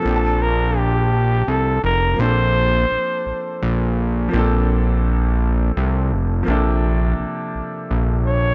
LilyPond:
<<
  \new Staff \with { instrumentName = "Flugelhorn" } { \time 6/8 \key bes \major \tempo 4. = 56 a'8 bes'8 g'4 a'8 bes'8 | c''2~ c''8 r8 | r2. | r2 r8 des''8 | }
  \new Staff \with { instrumentName = "Grand piano" } { \time 6/8 \key bes \major <f bes c' d' g' a''>2. | <f bes c' d' a'>2. | <f bes c' d' a'>2. | <c f bes d' a'>2. | }
  \new Staff \with { instrumentName = "Analog synth bass" } { \clef bass \time 6/8 \key bes \major bes,,2 c,8 f,,8 | bes,,4 bes,,8 bes,,8 bes,,4 | bes,,2 c,8 f,,8 | bes,,4 bes,,8 bes,,8 bes,,4 | }
>>